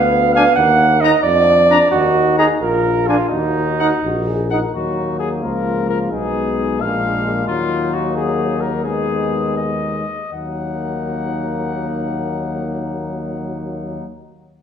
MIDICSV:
0, 0, Header, 1, 6, 480
1, 0, Start_track
1, 0, Key_signature, -6, "minor"
1, 0, Tempo, 448766
1, 620, Time_signature, 6, 3, 24, 8
1, 2057, Tempo, 469484
1, 4937, Tempo, 455235
1, 9257, Tempo, 494641
1, 14873, End_track
2, 0, Start_track
2, 0, Title_t, "Trumpet"
2, 0, Program_c, 0, 56
2, 386, Note_on_c, 0, 80, 75
2, 468, Note_off_c, 0, 80, 0
2, 1114, Note_on_c, 0, 82, 87
2, 1191, Note_off_c, 0, 82, 0
2, 1830, Note_on_c, 0, 82, 77
2, 1909, Note_off_c, 0, 82, 0
2, 2519, Note_on_c, 0, 82, 74
2, 2605, Note_off_c, 0, 82, 0
2, 3248, Note_on_c, 0, 80, 63
2, 3331, Note_off_c, 0, 80, 0
2, 3968, Note_on_c, 0, 78, 66
2, 4054, Note_off_c, 0, 78, 0
2, 4694, Note_on_c, 0, 78, 58
2, 4780, Note_off_c, 0, 78, 0
2, 4941, Note_on_c, 0, 66, 65
2, 5389, Note_off_c, 0, 66, 0
2, 5414, Note_on_c, 0, 68, 65
2, 5524, Note_off_c, 0, 68, 0
2, 5668, Note_on_c, 0, 70, 61
2, 6135, Note_off_c, 0, 70, 0
2, 6150, Note_on_c, 0, 70, 64
2, 6256, Note_off_c, 0, 70, 0
2, 6380, Note_on_c, 0, 68, 66
2, 7123, Note_on_c, 0, 77, 68
2, 7139, Note_off_c, 0, 68, 0
2, 7816, Note_off_c, 0, 77, 0
2, 7822, Note_on_c, 0, 65, 81
2, 8307, Note_on_c, 0, 66, 70
2, 8323, Note_off_c, 0, 65, 0
2, 8539, Note_off_c, 0, 66, 0
2, 8545, Note_on_c, 0, 68, 72
2, 9013, Note_on_c, 0, 70, 62
2, 9029, Note_off_c, 0, 68, 0
2, 9258, Note_off_c, 0, 70, 0
2, 9264, Note_on_c, 0, 68, 68
2, 9957, Note_off_c, 0, 68, 0
2, 9974, Note_on_c, 0, 75, 56
2, 10689, Note_off_c, 0, 75, 0
2, 10706, Note_on_c, 0, 78, 52
2, 14317, Note_off_c, 0, 78, 0
2, 14873, End_track
3, 0, Start_track
3, 0, Title_t, "Flugelhorn"
3, 0, Program_c, 1, 56
3, 0, Note_on_c, 1, 77, 98
3, 361, Note_off_c, 1, 77, 0
3, 367, Note_on_c, 1, 77, 108
3, 593, Note_off_c, 1, 77, 0
3, 600, Note_on_c, 1, 78, 108
3, 1079, Note_on_c, 1, 75, 97
3, 1095, Note_off_c, 1, 78, 0
3, 1311, Note_off_c, 1, 75, 0
3, 1318, Note_on_c, 1, 74, 113
3, 2034, Note_off_c, 1, 74, 0
3, 2046, Note_on_c, 1, 66, 93
3, 2513, Note_off_c, 1, 66, 0
3, 2527, Note_on_c, 1, 68, 81
3, 2634, Note_off_c, 1, 68, 0
3, 2762, Note_on_c, 1, 70, 82
3, 3239, Note_on_c, 1, 65, 81
3, 3254, Note_off_c, 1, 70, 0
3, 3458, Note_off_c, 1, 65, 0
3, 3464, Note_on_c, 1, 63, 76
3, 4664, Note_off_c, 1, 63, 0
3, 4941, Note_on_c, 1, 63, 38
3, 5654, Note_on_c, 1, 65, 43
3, 5669, Note_off_c, 1, 63, 0
3, 6385, Note_on_c, 1, 63, 43
3, 6401, Note_off_c, 1, 65, 0
3, 7109, Note_on_c, 1, 62, 50
3, 7125, Note_off_c, 1, 63, 0
3, 7830, Note_on_c, 1, 63, 51
3, 7846, Note_off_c, 1, 62, 0
3, 10462, Note_off_c, 1, 63, 0
3, 10708, Note_on_c, 1, 63, 39
3, 14318, Note_off_c, 1, 63, 0
3, 14873, End_track
4, 0, Start_track
4, 0, Title_t, "Trombone"
4, 0, Program_c, 2, 57
4, 391, Note_on_c, 2, 62, 71
4, 471, Note_off_c, 2, 62, 0
4, 1104, Note_on_c, 2, 63, 83
4, 1185, Note_off_c, 2, 63, 0
4, 1820, Note_on_c, 2, 62, 68
4, 1902, Note_off_c, 2, 62, 0
4, 2537, Note_on_c, 2, 63, 77
4, 2616, Note_off_c, 2, 63, 0
4, 3249, Note_on_c, 2, 62, 60
4, 3331, Note_off_c, 2, 62, 0
4, 3990, Note_on_c, 2, 63, 67
4, 4069, Note_off_c, 2, 63, 0
4, 4716, Note_on_c, 2, 63, 57
4, 4794, Note_off_c, 2, 63, 0
4, 4947, Note_on_c, 2, 54, 42
4, 5672, Note_on_c, 2, 53, 37
4, 5687, Note_off_c, 2, 54, 0
4, 6386, Note_off_c, 2, 53, 0
4, 6392, Note_on_c, 2, 56, 42
4, 7839, Note_on_c, 2, 54, 47
4, 7855, Note_off_c, 2, 56, 0
4, 9263, Note_off_c, 2, 54, 0
4, 9269, Note_on_c, 2, 56, 44
4, 10439, Note_off_c, 2, 56, 0
4, 10710, Note_on_c, 2, 54, 39
4, 14319, Note_off_c, 2, 54, 0
4, 14873, End_track
5, 0, Start_track
5, 0, Title_t, "French horn"
5, 0, Program_c, 3, 60
5, 0, Note_on_c, 3, 59, 81
5, 617, Note_off_c, 3, 59, 0
5, 624, Note_on_c, 3, 58, 82
5, 1078, Note_off_c, 3, 58, 0
5, 1340, Note_on_c, 3, 62, 70
5, 2017, Note_off_c, 3, 62, 0
5, 2056, Note_on_c, 3, 63, 76
5, 2750, Note_off_c, 3, 63, 0
5, 2775, Note_on_c, 3, 65, 72
5, 3495, Note_on_c, 3, 66, 65
5, 3510, Note_off_c, 3, 65, 0
5, 4172, Note_off_c, 3, 66, 0
5, 4226, Note_on_c, 3, 66, 65
5, 4470, Note_on_c, 3, 68, 58
5, 4486, Note_off_c, 3, 66, 0
5, 4701, Note_on_c, 3, 70, 60
5, 4717, Note_off_c, 3, 68, 0
5, 4938, Note_off_c, 3, 70, 0
5, 4943, Note_on_c, 3, 58, 45
5, 6382, Note_on_c, 3, 59, 43
5, 6398, Note_off_c, 3, 58, 0
5, 7111, Note_on_c, 3, 58, 46
5, 7127, Note_off_c, 3, 59, 0
5, 9268, Note_on_c, 3, 59, 50
5, 9283, Note_off_c, 3, 58, 0
5, 10462, Note_off_c, 3, 59, 0
5, 10698, Note_on_c, 3, 58, 39
5, 14313, Note_off_c, 3, 58, 0
5, 14873, End_track
6, 0, Start_track
6, 0, Title_t, "Bass trombone"
6, 0, Program_c, 4, 57
6, 0, Note_on_c, 4, 38, 77
6, 497, Note_off_c, 4, 38, 0
6, 615, Note_on_c, 4, 39, 82
6, 1214, Note_off_c, 4, 39, 0
6, 1326, Note_on_c, 4, 41, 85
6, 1931, Note_off_c, 4, 41, 0
6, 2049, Note_on_c, 4, 39, 78
6, 2642, Note_off_c, 4, 39, 0
6, 2756, Note_on_c, 4, 34, 77
6, 3360, Note_off_c, 4, 34, 0
6, 3485, Note_on_c, 4, 39, 68
6, 4094, Note_off_c, 4, 39, 0
6, 4216, Note_on_c, 4, 34, 68
6, 4819, Note_off_c, 4, 34, 0
6, 4942, Note_on_c, 4, 39, 43
6, 5665, Note_on_c, 4, 37, 49
6, 5681, Note_off_c, 4, 39, 0
6, 6377, Note_on_c, 4, 35, 48
6, 6393, Note_off_c, 4, 37, 0
6, 7111, Note_on_c, 4, 34, 55
6, 7127, Note_off_c, 4, 35, 0
6, 7814, Note_off_c, 4, 34, 0
6, 7820, Note_on_c, 4, 39, 57
6, 10418, Note_off_c, 4, 39, 0
6, 10694, Note_on_c, 4, 39, 43
6, 14311, Note_off_c, 4, 39, 0
6, 14873, End_track
0, 0, End_of_file